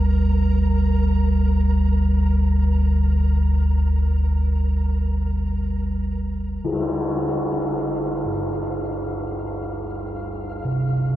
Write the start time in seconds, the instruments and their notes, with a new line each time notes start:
Already playing: synth drone G1 D2, singing bowl G3, synth texture A#4
6.64 synth drone G1 D2, synth texture F5, tam-tam
8.25 singing bowl G2
10.65 singing bowl C3